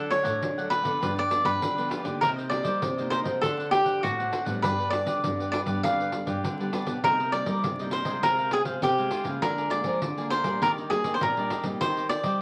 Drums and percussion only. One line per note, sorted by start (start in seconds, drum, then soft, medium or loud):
0.11 pandeiro medium
0.25 pandeiro medium
0.42 pandeiro medium
0.59 pandeiro soft
0.71 pandeiro medium
0.85 pandeiro medium
1.03 pandeiro medium
1.18 pandeiro soft
1.31 pandeiro medium
1.45 pandeiro medium
1.62 pandeiro medium
1.78 pandeiro soft
1.91 pandeiro medium
2.05 pandeiro soft
2.23 pandeiro medium
2.38 pandeiro soft
2.51 pandeiro medium
2.65 pandeiro medium
2.82 pandeiro medium
2.98 pandeiro soft
3.12 pandeiro medium
3.25 pandeiro medium
3.43 pandeiro medium
3.60 pandeiro soft
3.72 pandeiro medium
3.86 pandeiro medium
4.04 pandeiro medium
4.20 pandeiro soft
4.33 pandeiro medium
4.46 pandeiro medium
4.64 pandeiro medium
4.80 pandeiro soft
4.93 pandeiro medium
5.07 pandeiro medium
5.24 pandeiro medium
5.40 pandeiro soft
5.53 pandeiro medium
5.66 pandeiro medium
5.84 pandeiro medium
6.00 pandeiro soft
6.12 pandeiro medium
6.27 pandeiro medium
6.44 pandeiro medium
6.61 pandeiro soft
6.73 pandeiro medium
6.87 pandeiro medium
7.04 pandeiro medium
7.20 pandeiro soft
7.32 pandeiro medium
7.46 pandeiro medium
7.64 pandeiro medium
7.79 pandeiro soft
7.91 pandeiro medium
8.05 pandeiro medium
8.23 pandeiro medium
8.39 pandeiro soft
8.51 pandeiro medium
8.65 pandeiro medium
8.82 pandeiro medium
8.98 pandeiro soft
9.11 pandeiro medium
9.25 pandeiro medium
9.42 pandeiro medium
9.58 pandeiro soft
9.70 pandeiro medium
9.84 pandeiro medium
10.02 pandeiro medium
10.18 pandeiro soft
10.31 pandeiro medium
10.44 pandeiro medium
10.62 pandeiro medium
10.78 pandeiro soft
10.91 pandeiro medium
11.04 pandeiro medium
11.21 pandeiro medium
11.37 pandeiro soft
11.50 pandeiro medium
11.63 pandeiro medium
11.81 pandeiro medium
11.97 pandeiro soft
12.10 pandeiro medium
12.24 pandeiro medium